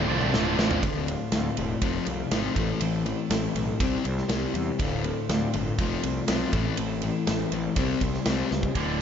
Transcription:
Already playing: D2 A2 D3 F4 C5 D5 A5
0.08 C2 D3 A3 C4 F4
0.21 mid tom
0.33 D1 D2 A2 D3 A3 C4 F4, snare
0.58 A1 D2 A2 D3 A3 C4 F4, snare
0.71 floor tom
0.83 D1 D2 A2 D3 A3 C4 F4, kick, ride
1.07 D2 A2 D3 A3 C4 F4, ride
1.31 D2 A2 D3 A3 C4 F4, snare, ride
1.57 E1 D2 A2 D3 A3 C4 F4, ride
1.81 F1 F2 C3 F3 A3 C4 F4, kick, ride
2.06 C2 F2 C3 F3 A3 C4 F4, ride
2.31 G#1 F2 C3 F3 A3 C4 F4, snare, ride
2.56 A1 A2 E3 A3 C4 E4 A4, kick, ride
2.81 A1 A2 E3 A3 C4 E4 A4, ride
3.05 A2 E3 A3 C4 E4 A4, ride
3.30 A1 A2 E3 A3 C4 E4 A4, snare, ride
3.55 B1 A2 E3 A3 C4 E4 A4, ride
3.80 C2 C3 G3 C4 E4 G4 C5, kick, ride
4.05 C2 C3 G3 C4 E4 G4 C5, ride
4.18 snare
4.29 C2 C3 G3 C4 E4 G4, snare, ride
4.33 C5
4.54 E2 C3 G3, ride
4.79 D1 D2 A2 D3 A3 C4, kick, ride
4.83 F4
5.04 D2 A2 D3 A3 C4 F4, ride
5.29 D2 A2 D3 A3 C4 F4, snare, ride
5.54 G1 D2 A2 D3 A3 C4 F4, ride
5.78 F1 F2 C3 F3 A3 C4 F4, kick, ride
6.03 C2 F2 C3 F3 A3 C4 F4, ride
6.28 B1 F2 C3 F3 A3 C4 F4, snare, ride
6.53 A1 A2 E3 A3 C4 E4 A4, kick, ride
6.77 A1 A2 E3 A3 C4 E4 A4, ride
7.02 A2 E3 A3 C4 E4 A4, ride
7.27 A1 A2 E3 A3 C4 E4 A4, snare, ride
7.52 A1 A2 E3 A3 C4 E4 A4, ride
7.76 C2 C3 G3 C4 E4 G4 C5, kick, ride
8.01 C2 C3 G3 C4 E4 G4 C5, kick, ride
8.14 snare
8.25 C2 C3 G3 C4 E4 G4 C5, snare, ride
8.51 C#2 C3 G3, snare
8.63 kick
8.75 D1 D2 A2 D3, kick, ride

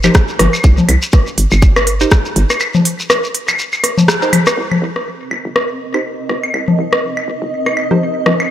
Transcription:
0.03 D#4 G4 A#4 C5, low conga, high woodblock, shekere
0.15 kick, cross-stick, shekere
0.28 shekere
0.39 G1, cross-stick, open hi-hat, low conga
0.53 claves, shekere
0.64 C2, kick, shekere
0.78 low conga, shekere
0.89 C2, open hi-hat, high woodblock
1.02 shekere
1.12 kick, cross-stick, shekere
1.27 shekere
1.38 G1, open hi-hat
1.51 G1, claves, shekere
1.62 kick, shekere
1.76 cross-stick, high woodblock, shekere
1.87 open hi-hat
2.00 D#4 G4 A#4 C5, shekere
2.11 kick, cross-stick, shekere
2.25 shekere
2.36 G1, open hi-hat
2.50 cross-stick, claves, shekere
2.60 high woodblock, shekere
2.74 low conga, shekere
2.85 open hi-hat
3.00 shekere
3.10 cross-stick, shekere
3.24 shekere
3.35 open hi-hat
3.48 claves, high woodblock, shekere
3.59 shekere
3.72 claves, shekere
3.84 cross-stick, open hi-hat
3.98 low conga, shekere
4.08 cross-stick, shekere
4.22 D#4 G4 A#4 C5, shekere
4.33 open hi-hat, low conga, high woodblock
4.46 cross-stick, claves, shekere
4.57 C2 C4
4.72 A#4, low conga, high woodblock
4.82 C2
4.94 D#5, cross-stick
5.31 G1, high woodblock
5.45 G1
5.56 cross-stick
5.94 D#4 G4 A#4 C5, high woodblock
6.29 G1, cross-stick
6.44 claves
6.54 C2, high woodblock
6.68 low conga
6.79 C2
6.93 cross-stick
7.17 high woodblock
7.28 G1
7.42 G1
7.66 cross-stick, claves
7.77 high woodblock
7.91 D#4 G4 A#4 C5, low conga
8.26 G1, cross-stick, low conga
8.40 claves, high woodblock

